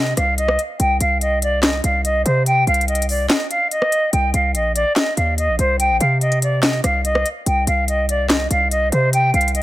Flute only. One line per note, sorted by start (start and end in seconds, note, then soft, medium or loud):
0.00 0.14 D#5 medium
0.17 0.35 F5 medium
0.38 0.61 D#5 medium
0.80 0.97 G5 medium
1.01 1.18 F5 medium
1.21 1.39 D#5 medium
1.43 1.60 D5 medium
1.64 1.81 D#5 medium
1.84 2.02 F5 medium
2.05 2.22 D#5 medium
2.26 2.43 C5 medium
2.47 2.64 G5 loud
2.68 2.85 F5 medium
2.88 3.06 D#5 medium
3.10 3.27 D5 medium
3.29 3.47 D#5 medium
3.50 3.68 F5 medium
3.71 4.10 D#5 medium
4.13 4.30 G5 medium
4.34 4.52 F5 medium
4.55 4.72 D#5 medium
4.75 4.93 D5 loud
4.97 5.14 D#5 medium
5.17 5.34 F5 medium
5.38 5.55 D#5 medium
5.59 5.77 C5 medium
5.79 5.97 G5 loud
6.01 6.18 F5 medium
6.21 6.39 D#5 medium
6.43 6.60 D5 medium
6.63 6.81 D#5 medium
6.84 7.01 F5 medium
7.04 7.28 D#5 loud
7.47 7.64 G5 medium
7.68 7.85 F5 medium
7.88 8.06 D#5 medium
8.10 8.27 D5 medium
8.30 8.48 D#5 medium
8.51 8.68 F5 medium
8.71 8.89 D#5 medium
8.92 9.10 C5 medium
9.14 9.31 G5 loud
9.35 9.52 F5 medium
9.55 9.63 D#5 medium